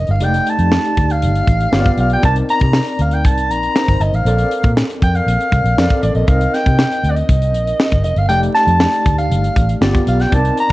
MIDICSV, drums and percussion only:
0, 0, Header, 1, 2, 480
1, 0, Start_track
1, 0, Tempo, 505476
1, 201, Time_signature, 4, 2, 24, 8
1, 10184, End_track
2, 0, Start_track
2, 0, Title_t, "Drums"
2, 66, Note_on_c, 9, 42, 34
2, 161, Note_off_c, 9, 42, 0
2, 194, Note_on_c, 9, 42, 82
2, 289, Note_off_c, 9, 42, 0
2, 324, Note_on_c, 9, 42, 54
2, 419, Note_off_c, 9, 42, 0
2, 443, Note_on_c, 9, 42, 71
2, 538, Note_off_c, 9, 42, 0
2, 558, Note_on_c, 9, 42, 43
2, 653, Note_off_c, 9, 42, 0
2, 681, Note_on_c, 9, 38, 110
2, 776, Note_off_c, 9, 38, 0
2, 805, Note_on_c, 9, 42, 51
2, 899, Note_off_c, 9, 42, 0
2, 924, Note_on_c, 9, 36, 78
2, 926, Note_on_c, 9, 42, 65
2, 1019, Note_off_c, 9, 36, 0
2, 1021, Note_off_c, 9, 42, 0
2, 1044, Note_on_c, 9, 42, 49
2, 1139, Note_off_c, 9, 42, 0
2, 1160, Note_on_c, 9, 42, 82
2, 1255, Note_off_c, 9, 42, 0
2, 1285, Note_on_c, 9, 42, 51
2, 1379, Note_off_c, 9, 42, 0
2, 1399, Note_on_c, 9, 36, 79
2, 1403, Note_on_c, 9, 42, 66
2, 1494, Note_off_c, 9, 36, 0
2, 1498, Note_off_c, 9, 42, 0
2, 1524, Note_on_c, 9, 42, 48
2, 1619, Note_off_c, 9, 42, 0
2, 1640, Note_on_c, 9, 38, 109
2, 1735, Note_off_c, 9, 38, 0
2, 1757, Note_on_c, 9, 42, 47
2, 1763, Note_on_c, 9, 36, 84
2, 1852, Note_off_c, 9, 42, 0
2, 1858, Note_off_c, 9, 36, 0
2, 1877, Note_on_c, 9, 42, 70
2, 1972, Note_off_c, 9, 42, 0
2, 1991, Note_on_c, 9, 42, 37
2, 2086, Note_off_c, 9, 42, 0
2, 2116, Note_on_c, 9, 42, 82
2, 2121, Note_on_c, 9, 36, 98
2, 2210, Note_off_c, 9, 42, 0
2, 2216, Note_off_c, 9, 36, 0
2, 2240, Note_on_c, 9, 42, 55
2, 2335, Note_off_c, 9, 42, 0
2, 2365, Note_on_c, 9, 42, 70
2, 2460, Note_off_c, 9, 42, 0
2, 2466, Note_on_c, 9, 42, 43
2, 2481, Note_on_c, 9, 36, 84
2, 2561, Note_off_c, 9, 42, 0
2, 2576, Note_off_c, 9, 36, 0
2, 2596, Note_on_c, 9, 38, 117
2, 2691, Note_off_c, 9, 38, 0
2, 2723, Note_on_c, 9, 42, 55
2, 2818, Note_off_c, 9, 42, 0
2, 2838, Note_on_c, 9, 42, 65
2, 2933, Note_off_c, 9, 42, 0
2, 2955, Note_on_c, 9, 42, 49
2, 3050, Note_off_c, 9, 42, 0
2, 3081, Note_on_c, 9, 42, 75
2, 3083, Note_on_c, 9, 36, 83
2, 3176, Note_off_c, 9, 42, 0
2, 3178, Note_off_c, 9, 36, 0
2, 3205, Note_on_c, 9, 42, 50
2, 3300, Note_off_c, 9, 42, 0
2, 3331, Note_on_c, 9, 42, 62
2, 3426, Note_off_c, 9, 42, 0
2, 3448, Note_on_c, 9, 42, 47
2, 3542, Note_off_c, 9, 42, 0
2, 3567, Note_on_c, 9, 38, 113
2, 3662, Note_off_c, 9, 38, 0
2, 3688, Note_on_c, 9, 36, 80
2, 3689, Note_on_c, 9, 42, 48
2, 3783, Note_off_c, 9, 36, 0
2, 3784, Note_off_c, 9, 42, 0
2, 3805, Note_on_c, 9, 42, 71
2, 3900, Note_off_c, 9, 42, 0
2, 3929, Note_on_c, 9, 42, 36
2, 4024, Note_off_c, 9, 42, 0
2, 4049, Note_on_c, 9, 42, 77
2, 4144, Note_off_c, 9, 42, 0
2, 4163, Note_on_c, 9, 42, 55
2, 4258, Note_off_c, 9, 42, 0
2, 4285, Note_on_c, 9, 42, 70
2, 4380, Note_off_c, 9, 42, 0
2, 4399, Note_on_c, 9, 42, 44
2, 4407, Note_on_c, 9, 36, 87
2, 4494, Note_off_c, 9, 42, 0
2, 4502, Note_off_c, 9, 36, 0
2, 4529, Note_on_c, 9, 38, 111
2, 4624, Note_off_c, 9, 38, 0
2, 4653, Note_on_c, 9, 42, 53
2, 4748, Note_off_c, 9, 42, 0
2, 4767, Note_on_c, 9, 36, 85
2, 4772, Note_on_c, 9, 42, 65
2, 4862, Note_off_c, 9, 36, 0
2, 4867, Note_off_c, 9, 42, 0
2, 4889, Note_on_c, 9, 42, 47
2, 4984, Note_off_c, 9, 42, 0
2, 5014, Note_on_c, 9, 42, 84
2, 5109, Note_off_c, 9, 42, 0
2, 5132, Note_on_c, 9, 42, 50
2, 5227, Note_off_c, 9, 42, 0
2, 5243, Note_on_c, 9, 36, 79
2, 5249, Note_on_c, 9, 42, 63
2, 5338, Note_off_c, 9, 36, 0
2, 5344, Note_off_c, 9, 42, 0
2, 5371, Note_on_c, 9, 42, 50
2, 5466, Note_off_c, 9, 42, 0
2, 5492, Note_on_c, 9, 38, 109
2, 5587, Note_off_c, 9, 38, 0
2, 5602, Note_on_c, 9, 42, 46
2, 5606, Note_on_c, 9, 36, 81
2, 5696, Note_off_c, 9, 42, 0
2, 5701, Note_off_c, 9, 36, 0
2, 5725, Note_on_c, 9, 42, 70
2, 5820, Note_off_c, 9, 42, 0
2, 5838, Note_on_c, 9, 42, 37
2, 5933, Note_off_c, 9, 42, 0
2, 5961, Note_on_c, 9, 42, 78
2, 5963, Note_on_c, 9, 36, 93
2, 6056, Note_off_c, 9, 42, 0
2, 6058, Note_off_c, 9, 36, 0
2, 6086, Note_on_c, 9, 42, 54
2, 6181, Note_off_c, 9, 42, 0
2, 6212, Note_on_c, 9, 42, 69
2, 6213, Note_on_c, 9, 38, 29
2, 6307, Note_off_c, 9, 42, 0
2, 6308, Note_off_c, 9, 38, 0
2, 6322, Note_on_c, 9, 42, 42
2, 6326, Note_on_c, 9, 36, 85
2, 6417, Note_off_c, 9, 42, 0
2, 6421, Note_off_c, 9, 36, 0
2, 6445, Note_on_c, 9, 38, 112
2, 6540, Note_off_c, 9, 38, 0
2, 6570, Note_on_c, 9, 42, 53
2, 6665, Note_off_c, 9, 42, 0
2, 6687, Note_on_c, 9, 42, 63
2, 6782, Note_off_c, 9, 42, 0
2, 6802, Note_on_c, 9, 42, 51
2, 6897, Note_off_c, 9, 42, 0
2, 6922, Note_on_c, 9, 36, 80
2, 6924, Note_on_c, 9, 42, 84
2, 7017, Note_off_c, 9, 36, 0
2, 7019, Note_off_c, 9, 42, 0
2, 7045, Note_on_c, 9, 42, 50
2, 7139, Note_off_c, 9, 42, 0
2, 7164, Note_on_c, 9, 42, 69
2, 7259, Note_off_c, 9, 42, 0
2, 7287, Note_on_c, 9, 42, 48
2, 7382, Note_off_c, 9, 42, 0
2, 7404, Note_on_c, 9, 38, 109
2, 7499, Note_off_c, 9, 38, 0
2, 7517, Note_on_c, 9, 42, 49
2, 7522, Note_on_c, 9, 36, 82
2, 7612, Note_off_c, 9, 42, 0
2, 7617, Note_off_c, 9, 36, 0
2, 7636, Note_on_c, 9, 42, 69
2, 7731, Note_off_c, 9, 42, 0
2, 7752, Note_on_c, 9, 42, 36
2, 7847, Note_off_c, 9, 42, 0
2, 7875, Note_on_c, 9, 42, 79
2, 7970, Note_off_c, 9, 42, 0
2, 8006, Note_on_c, 9, 42, 53
2, 8101, Note_off_c, 9, 42, 0
2, 8123, Note_on_c, 9, 42, 69
2, 8124, Note_on_c, 9, 38, 30
2, 8218, Note_off_c, 9, 42, 0
2, 8219, Note_off_c, 9, 38, 0
2, 8238, Note_on_c, 9, 42, 42
2, 8333, Note_off_c, 9, 42, 0
2, 8357, Note_on_c, 9, 38, 115
2, 8452, Note_off_c, 9, 38, 0
2, 8480, Note_on_c, 9, 42, 52
2, 8575, Note_off_c, 9, 42, 0
2, 8600, Note_on_c, 9, 42, 65
2, 8601, Note_on_c, 9, 36, 80
2, 8695, Note_off_c, 9, 42, 0
2, 8696, Note_off_c, 9, 36, 0
2, 8722, Note_on_c, 9, 42, 50
2, 8817, Note_off_c, 9, 42, 0
2, 8846, Note_on_c, 9, 42, 76
2, 8941, Note_off_c, 9, 42, 0
2, 8967, Note_on_c, 9, 42, 48
2, 9062, Note_off_c, 9, 42, 0
2, 9081, Note_on_c, 9, 36, 78
2, 9086, Note_on_c, 9, 42, 65
2, 9176, Note_off_c, 9, 36, 0
2, 9181, Note_off_c, 9, 42, 0
2, 9204, Note_on_c, 9, 42, 50
2, 9299, Note_off_c, 9, 42, 0
2, 9323, Note_on_c, 9, 38, 104
2, 9418, Note_off_c, 9, 38, 0
2, 9446, Note_on_c, 9, 36, 85
2, 9446, Note_on_c, 9, 42, 50
2, 9541, Note_off_c, 9, 36, 0
2, 9541, Note_off_c, 9, 42, 0
2, 9563, Note_on_c, 9, 42, 74
2, 9658, Note_off_c, 9, 42, 0
2, 9683, Note_on_c, 9, 42, 37
2, 9692, Note_on_c, 9, 38, 29
2, 9778, Note_off_c, 9, 42, 0
2, 9787, Note_off_c, 9, 38, 0
2, 9802, Note_on_c, 9, 36, 97
2, 9802, Note_on_c, 9, 42, 80
2, 9897, Note_off_c, 9, 36, 0
2, 9897, Note_off_c, 9, 42, 0
2, 9922, Note_on_c, 9, 42, 54
2, 10017, Note_off_c, 9, 42, 0
2, 10040, Note_on_c, 9, 42, 69
2, 10135, Note_off_c, 9, 42, 0
2, 10153, Note_on_c, 9, 42, 45
2, 10184, Note_off_c, 9, 42, 0
2, 10184, End_track
0, 0, End_of_file